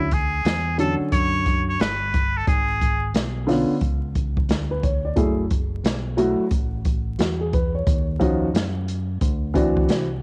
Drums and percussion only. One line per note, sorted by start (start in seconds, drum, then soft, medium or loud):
0.11 kick medium
0.11 closed hi-hat medium
0.45 snare loud
0.45 closed hi-hat medium
0.79 closed hi-hat medium
1.12 kick medium
1.12 closed hi-hat medium
1.46 kick medium
1.46 closed hi-hat medium
1.79 snare loud
1.79 closed hi-hat medium
2.14 kick loud
2.14 closed hi-hat medium
2.47 kick loud
2.47 closed hi-hat medium
2.81 kick medium
2.81 closed hi-hat medium
3.14 snare loud
3.14 closed hi-hat medium
3.48 snare soft
3.48 open hi-hat medium
3.81 kick medium
3.81 closed hi-hat medium
4.15 kick medium
4.15 closed hi-hat medium
4.37 kick medium
4.49 snare loud
4.49 closed hi-hat medium
4.83 kick medium
4.83 closed hi-hat medium
5.16 kick loud
5.16 closed hi-hat medium
5.50 kick medium
5.50 closed hi-hat medium
5.84 snare loud
5.84 closed hi-hat medium
6.18 closed hi-hat medium
6.51 kick medium
6.51 closed hi-hat medium
6.85 kick medium
6.85 closed hi-hat medium
7.19 snare loud
7.19 closed hi-hat medium
7.53 kick medium
7.53 closed hi-hat medium
7.87 kick loud
7.87 closed hi-hat medium
8.21 kick medium
8.21 closed hi-hat medium
8.55 snare loud
8.55 closed hi-hat medium
8.88 closed hi-hat medium
9.21 kick medium
9.21 closed hi-hat medium
9.55 kick medium
9.55 closed hi-hat medium
9.77 kick loud
9.89 snare loud
9.89 closed hi-hat medium